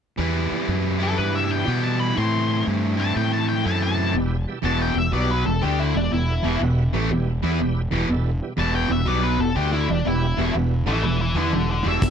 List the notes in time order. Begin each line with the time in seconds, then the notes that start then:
0.18 E2 E3 G3 B3 E4
0.51 muted fingered electric bass stroke
0.68 F#2
0.99 E3 G3 B3 E4 A4
1.18 G2 B4
1.35 E5
1.51 G5
1.65 B2 E3 G3 B3 E4
1.84 A5
1.99 B5
2.16 A2 E3 A3 C4 E4 C6
2.67 G2
2.97 A2 E3 A3 C4 E4 A5
3.16 A2 G5
3.33 A5
3.49 G5
3.64 F#2 A2 E3 A3 C4 E4 A5
3.83 A5
4.13 E1 E2 B2 G3 B3 E4 G4
4.47 G3 B3 E4 G4
4.63 E1 E2 B2 E3 G3 B3 E4 F#4 A5
4.82 G5
4.95 E1 E2 B2 G3 B3 E4 G4 E5
5.12 B1 B2 F#3 G3 B3 E4 G4 D5
5.31 B4
5.44 E1 E2 B2 G3 B3 E4 A4
5.61 D2 D3 G3 A3 B3 D4 E4 G4
5.80 E4
5.94 E1 E2 B2 G3 B3 D4 E4 G4
6.12 E1 E2 B2 G3 B3 E4 A4
6.43 E1 E2 B2 E3 G3 B3 E4 G4
6.60 E1 E2 B2 G3 B3 E4 F#4
6.93 A1 A2 E3 G3 A3 B3 E4 G4
7.10 E1 E2 B2 G3 B3 E4 G4
7.43 E2 E3 G3 B3 E4 A4
7.59 E1 E2 B2 G3 B3 E4 G4
7.91 E1 E2 B2 E3 G3 B3 E4 G4
8.09 E1 E2 B2 G3 B3 E4 A4
8.42 G3 B3 E4 G4
8.57 E1 E2 B2 E3 G3 B3 E4 F#4 A5
8.75 G5
8.90 E1 E2 B2 G3 B3 E4 F#4 E5
9.06 B1 B2 F#3 G3 B3 E4 G4 D5
9.23 B4
9.38 E1 E2 B2 G3 B3 E4 G4 A4
9.55 D2 D3 G3 A3 B3 D4 E4 G4
9.73 E4
9.88 E1 E2 B2 G3 B3 D4 E4 G4
10.05 E1 E2 B2 G3 B3 E4 G4
10.37 E1 E2 B2 E3 G3 B3 E4 G4
10.53 E1 E2 B2 G3 B3 E4 F#4
10.86 A1 A2 E3 G3 A3 B3 E4 F#4 B4 E5
11.02 E1 E2 B2 G3 B3 E4 A4 B4 E5
11.21 B4 E5
11.35 E2 E3 G3 B3 E4 G4 A4 D5
11.52 E1 E2 B2 G3 B3 E4 G4 A4 D5
11.70 A4 D5
11.83 E1 E2 B2 E3 G3 B3 E4 G4
11.89 E5
12.01 E1 E2 B2 G3 B3 E4 F#4, kick, open hi-hat